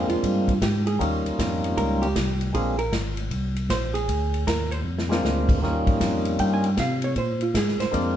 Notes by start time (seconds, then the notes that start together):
Already playing: G#3 A#3 C4 D4 F4
0.09 F2 F4, ride
0.23 G2, kick, ride
0.48 kick, ride
0.61 G#2 G4, kick, snare, hi-hat pedal, ride
0.87 G#4, ride
0.99 D#2 G3 A#3 C#4 D#4 F4, kick, ride
1.25 D#2, ride
1.38 F2, kick, snare, hi-hat pedal, ride
1.64 ride
1.77 C#2 A#4, kick, ride
2.02 G4, ride
2.15 C2, kick, snare, hi-hat pedal, ride
2.41 ride
2.53 A#1 G#3 A#3 C4 D4 F4 G#4, kick, ride
2.79 A#4, ride
2.92 G#1, kick, snare, hi-hat pedal, ride
3.17 ride
3.31 C2, kick, ride
3.56 ride
3.69 A#1 C5, kick, snare, hi-hat pedal, ride
3.94 G#4, ride
4.08 D2, kick, ride
4.34 ride
4.47 D#2 A#4, kick, snare, hi-hat pedal, ride
4.71 C5, ride
4.85 F2
4.98 snare
5.09 G#3 A#3 C4 D4 F4, snare
5.24 D2, snare, hi-hat pedal
5.49 kick, crash
5.62 D#2 G3 A#3 C#4 D#4 F4, kick, snare
5.87 D#2, kick, ride
6.00 F2, kick, snare, hi-hat pedal, ride
6.25 ride
6.39 G2 G5, kick, ride
6.54 G#5
6.64 G5, ride
6.77 C3 F5, kick, snare, hi-hat pedal, ride
7.02 C#5, ride
7.16 A#2 C5, kick, ride
7.41 F4, ride
7.54 G#2 G#4, kick, snare, hi-hat pedal, ride
7.68 snare
7.79 G#2 C5, snare, ride
7.91 F2 G#3 A#3 C4 D4 F4 D5, kick, ride